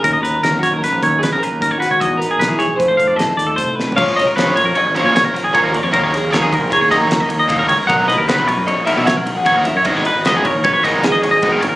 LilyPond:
<<
  \new Staff \with { instrumentName = "Clean electric guitar" } { \time 5/4 \key dis \phrygian \tempo 4 = 153 ais'16 dis''16 b'8 ais'8 cis''16 ais'16 b'8 cis''8 b'16 ais'16 b'8 ais'16 cis''16 b'16 cis''16 | dis''8 b'16 gis'16 b'16 gis'16 cis''8 b'16 c''16 f''16 d''16 ees''16 c''16 d''16 a'16 c''8 b'8 | eis''8 dis''16 ais'16 b'8 cis''16 ais'16 cis''8 ais'16 cis''16 cis''16 ais'8 gis'16 cis''16 ais'8 cis''16 | ais'16 cis''16 ais'8 cis''16 gis'16 ais'8 cis''16 cis''16 dis''16 cis''8 dis''16 cis''16 dis''8 ais'16 cis''16 ais'16 |
fis''8 dis''16 ais'16 b'8 cis''16 ais'16 cis''8 ais'16 cis''16 cis''16 ais'8 gis'16 cis''16 ais'8 cis''16 | ais'16 cis''16 b'8 dis''16 gis'16 ais'8 cis''16 cis''16 dis''16 cis''8 dis''16 cis''16 dis''8 ais'16 cis''16 ais'16 | }
  \new Staff \with { instrumentName = "Clean electric guitar" } { \time 5/4 \key dis \phrygian ais'8 ais'4 fis'8 ais'4 gis'8 ais'4 fis'8~ | fis'8 ais'4 gis'8 c''4 a'4. r8 | cis''8 cis''8 cis''4 dis''8 cis''4. ais'8 cis''8 | cis''8 gis'8 ais'4 gis'8 ais'4. r4 |
ais'8 b'8 b'4 dis''8 e''8 fis''8. fis''8. e''8 | dis''8 dis''4 cis''8 b'8 ais'8 gis'4. r8 | }
  \new Staff \with { instrumentName = "Clean electric guitar" } { \time 5/4 \key dis \phrygian << { <cis' dis' fis'>8 cis'16 dis'16 cis'8 cis'16 dis'16 cis'8 fis'8 cis'8 cis'16 dis'16 <cis' dis' fis'>8 cis'16 dis'16 | <b dis'>8 dis'4. <a ees' a'>8 ees'8 a8 ees'8 a8 a'8 | r1 r4 | r1 r4 |
r1 r4 | r1 r4 | } \\ { dis4 fis4. dis4. dis4 | e,4. e,8 f,4 f4. c8 | r1 r4 | r1 r4 |
r1 r4 | r1 r4 | } >> }
  \new Staff \with { instrumentName = "Overdriven electric guitar" } { \time 5/4 \key dis \phrygian r1 r4 | r1 r4 | <ais, eis ais cis'>8 r8 <ais, eis ais cis'>8 r4 <ais, eis ais cis'>8 r4 <ais, eis ais cis'>8 r8 | <dis fis ais dis'>8 r8 <dis fis ais dis'>8 r4 <dis fis ais dis'>8 r4 <dis fis ais dis'>8 r8 |
<dis fis b dis'>8 r8 <dis fis b dis'>8 r4 <dis fis b dis'>8 r4 <dis fis b dis'>8 r8 | <dis gis b dis'>8 r8 <dis gis b dis'>8 r4 <dis gis b dis'>8 r4 <dis gis b dis'>8 r8 | }
  \new Staff \with { instrumentName = "Fingered electric bass" } { \clef bass \time 5/4 \key dis \phrygian dis,8 dis,8 dis,8 r16 dis,16 r16 ais,,16 dis,8. ais,,16 r16 dis,8 r8 cis,16 | e,8 r8 b,,16 e8 b,,16 f,8 r16 f,16 a,16 r16 ees,8 c,8 r8 | ais,,8. cis,16 r16 ais,,8 eis,16 r16 gis,,8 ais,16 r16 ais,,8 gis,,16 r16 dis,8 eis,16 | dis,8. dis,8 dis,8 ais,,16 r16 dis,16 r16 dis,16 dis,16 r16 dis,8 dis,8 cis,8 |
b,,8. dis,16 r16 b,,8 fis,16 r16 ais,,8 b,16 r16 b,,8 ais,,16 r16 dis,8 fis,16 | gis,,8. gis,,8 gis,,8 dis,16 r16 gis,,16 r16 gis,,16 gis,,16 r16 gis,,8 gis,,16 r16 gis,,8 | }
  \new DrumStaff \with { instrumentName = "Drums" } \drummode { \time 5/4 <hh bd>8 hh8 <hh sn>8 <hh bd sn>8 <hh sn>8 <hh bd>8 <hh sn>8 hh8 <hh bd>8 <hh sn>8 | <hh bd>8 hh8 <hh sn>8 <hh bd sn>8 <hh bd>8 <hh bd>8 <hh sn>8 hh8 \tuplet 3/2 { <hh bd>16 r16 r16 sn16 r16 tomfh16 } | <cymc bd>8 <cymr sn>8 <cymr sn>8 cymr8 cymr8 cymr8 <cymr sn>8 <cymr sn>8 <bd cymr>8 cymr8 | <bd cymr>8 <cymr sn>8 <cymr sn>8 <bd cymr>8 <bd cymr sn>8 <bd cymr sn>8 <cymr sn>8 cymr8 <bd cymr sn>8 cymr8 |
<bd cymr>8 <cymr sn>8 <cymr sn>8 cymr8 cymr8 cymr8 <cymr sn>8 cymr8 <bd cymr sn>8 cymr8 | <bd cymr>8 cymr8 <cymr sn>8 <bd cymr>8 <bd cymr>8 <bd cymr sn>8 <cymr sn>8 cymr8 <bd cymr>8 cymr8 | }
>>